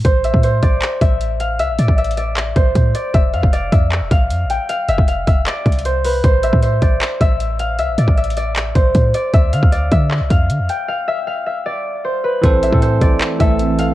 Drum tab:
HH |x-----x-----x-----x-----x-----x-----x-----x-----|x-----x-----x-x-x-x-----x-----x-----x-----x-----|x-----x-----x-----x-----x-----x-----x-----x-----|x-----x-----x-----x-----x-----x-x-x-x-----o-----|
CP |------------------------x-----------------------|------------------------x-----------------------|------------------------x-----------------------|------------------------x-----------------------|
BD |o--------o--------o-----------o-----------------|---------o--------------------o-----o-----------|o--------o--------o-----------o-----------------|---------o--------o-----------o-----------------|

HH |x-----x-----x-----x-----x-----x-----x-----x-----|x-----x-----x-x-x-x-----x-----x-----x-----x-----|x-----x-----x-----x-----x-----x-----x-----x-----|------------------------------------------------|
CP |------------------------x-----------------------|------------------------x-----------------------|------------------------x-----------------------|------------------------------------------------|
BD |o--------o--------o-----------o-----------------|---------o--------------------o-----o-----------|o--------o--------o-----------o-----------------|------------------------------------------------|

HH |x-----x-----x-----x-----x-----x-----x-----x-----|
CP |------------------------x-----------------------|
BD |o--------o--------o-----------o-----------------|